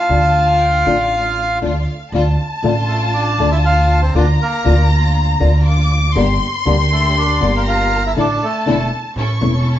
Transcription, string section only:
0.10 0.82 A3 medium
0.10 0.83 D4 medium
0.10 0.83 F4 medium
0.87 1.59 A3 medium
0.87 1.59 D4 medium
0.87 1.59 F4 medium
1.63 1.84 A3 medium
1.63 1.84 D4 medium
1.63 1.84 F4 medium
2.14 2.35 A3 medium
2.14 2.35 D4 medium
2.14 2.35 F4 medium
2.64 3.36 A3 medium
2.64 3.36 D4 medium
2.64 3.36 F4 loud
3.39 4.11 A3 medium
3.39 4.11 D4 medium
3.39 4.11 F4 medium
4.15 4.36 A#3 medium
4.15 4.36 D4 medium
4.15 4.36 F4 medium
4.65 5.37 A#3 medium
4.65 5.37 D4 medium
4.65 5.37 F4 loud
5.42 6.13 A#3 medium
5.42 6.13 D4 medium
5.42 6.13 F4 medium
6.16 6.37 A#3 medium
6.16 6.37 D4 medium
6.16 6.38 G4 medium
6.67 7.38 A#3 medium
6.67 7.38 D4 medium
6.67 7.38 G4 loud
7.41 8.13 A#3 medium
7.41 8.13 D4 medium
7.41 8.14 G4 medium
8.17 8.38 D4 medium
8.17 8.38 E4 medium
8.17 8.38 A4 medium
8.68 8.89 D4 medium
8.68 8.89 E4 medium
8.68 8.89 A4 medium
9.17 9.39 C#4 medium
9.17 9.39 E4 medium
9.17 9.39 A4 medium
9.43 9.79 C#4 medium
9.43 9.79 E4 medium
9.43 9.79 A4 medium

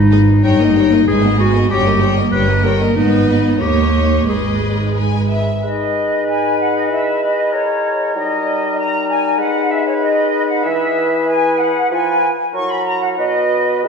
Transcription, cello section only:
0.00 0.36 G#2 medium
0.44 1.00 G2 medium
1.08 1.63 G#2 medium
1.71 2.25 G2 medium
2.33 2.88 G2 medium
2.96 3.56 G#2 medium
3.60 4.28 D#2 medium
4.28 5.40 G#2 soft

